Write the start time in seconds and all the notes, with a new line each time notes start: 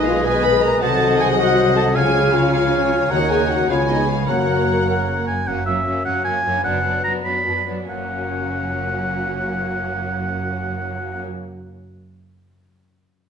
Already playing: B1 B2 D#3 G#3 B3 G#4 B4 D#5 G#5
0.05 D#4 F4 F5
0.25 G#4 B4 D#5 G#5
0.43 D#4 B4 B5
0.62 G#3 A#4 A#5
0.82 C2 C3 F#3 F#4 A4 C5 D#5 F#5 A5
1.01 F#3
1.19 D#4 G#4 G#5
1.38 F#4 C5 D#5 F#5
1.57 D#4
1.76 F#3 A4 A5
1.95 C#2 C#3 F3 C#4 F4 G#4 C#5 F5 G#5
2.15 G#3
2.34 F4 F5
2.53 F4 C#5 F5 G#5
2.73 F4
2.92 G#3
3.10 D#2 C#3 D#3 A#3 F#4 C#5 D#5 F#5 A#5
3.30 C#4 G#4 G#5
3.50 F#4 A#4 F#5
3.69 C#2 C#3 B3 F4 G#4 C#5 F5 G#5 B5
3.89 C#4 D#4 D#5
4.08 F4 G#4 B4 F5
4.28 F#1 F#2 C#3 A#3 F#4 A#4 C#5 F#5 A#5
4.49 C#4
4.69 F#4
4.88 A#4
5.08 F#4
5.27 F#2 C#4 G#5
5.34 C#4
5.38 F#4
5.43 A#4
5.47 F#1 F#2 F#3 A#3 C#4 F#5
5.66 F#2 F#3 A#3 C#4 E5
5.86 F#2 F#3 A#3 C#4
6.05 F#2 F#3 A#3 C#4 F#5
6.24 F#2 F#3 A#3 C#4 G#5
6.45 F#2 F#3 A#3 C#4
6.51 D4
6.56 F#4
6.60 B4 F#5
6.65 F#1 F#2 F#3 B3 D4
6.84 F#2 F#3 B3 D4
7.04 F#2 F#3 B3 D4 A#5
7.24 F#2 F#3 B3 D4 B5
7.47 F#2 F#3 B3 D4
7.68 F#2 F#3 B3 D4
7.89 F#1 F#2 F#3 A#3 C#4 F#5
7.97 F#3
8.03 C#4
8.10 F#4
8.17 A#4
8.24 F#5